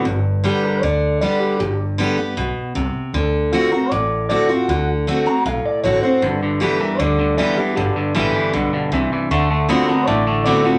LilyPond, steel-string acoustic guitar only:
\new Staff \with { instrumentName = "Steel-string acoustic guitar" } { \time 4/4 \key g \major \tempo 4 = 156 << { r4 <d g b g'>4 r4 <d g b g'>4 | r4 <d g b g'>8 <b g'>8 r2 | r4 <d a c' fis'>8 <c' fis'>8 r4 <d a c' fis'>8 <c' fis'>8 | r4 <d a c' fis'>8 <c' fis'>8 r4 <d a c' fis'>8 <c' fis'>8 |
r4 <d g b g'>8 <b g'>8 r4 <d g b g'>8 <b g'>8 | r4 <d g b g'>4 r2 | r4 <d a c' fis'>8 <c' fis'>8 r4 <d a c' fis'>8 <c' fis'>8 | } \\ { g,2 d2 | g,2 b,4 c4 | d2 a,2 | d2 a,2 |
g,2 d2 | g,2 b,4 c4 | d2 a,2 | } >> }